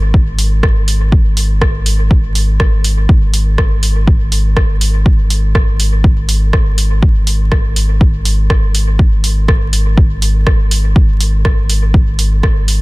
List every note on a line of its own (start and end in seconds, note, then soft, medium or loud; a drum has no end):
0.00 3.07 G#1 medium
0.14 kick loud
0.39 open hi-hat medium
0.63 kick loud
0.63 cross-stick medium
0.88 open hi-hat medium
1.12 kick loud
1.37 open hi-hat medium
1.61 kick loud
1.61 cross-stick medium
1.86 open hi-hat medium
2.11 kick loud
2.35 open hi-hat medium
2.60 kick loud
2.60 cross-stick medium
2.84 open hi-hat medium
3.09 10.94 G#1 medium
3.09 kick loud
3.34 open hi-hat medium
3.58 kick loud
3.58 cross-stick medium
3.83 open hi-hat medium
4.07 kick loud
4.32 open hi-hat medium
4.57 kick loud
4.57 cross-stick medium
4.81 open hi-hat medium
5.06 kick loud
5.30 open hi-hat medium
5.55 kick loud
5.55 cross-stick medium
5.80 open hi-hat medium
6.04 kick loud
6.29 open hi-hat medium
6.53 kick loud
6.53 cross-stick medium
6.78 open hi-hat medium
7.03 kick loud
7.27 open hi-hat medium
7.52 kick loud
7.52 cross-stick medium
7.76 open hi-hat medium
8.01 kick loud
8.25 open hi-hat medium
8.50 kick loud
8.50 cross-stick medium
8.75 open hi-hat medium
8.99 kick loud
9.24 open hi-hat medium
9.48 kick loud
9.48 cross-stick medium
9.73 open hi-hat medium
9.97 kick loud
10.22 open hi-hat medium
10.47 kick loud
10.47 cross-stick medium
10.71 open hi-hat medium
10.96 12.82 G#1 medium
10.96 kick loud
11.20 open hi-hat medium
11.45 kick loud
11.45 cross-stick medium
11.70 open hi-hat medium
11.94 kick loud
12.19 open hi-hat medium
12.43 kick loud
12.43 cross-stick medium
12.68 open hi-hat medium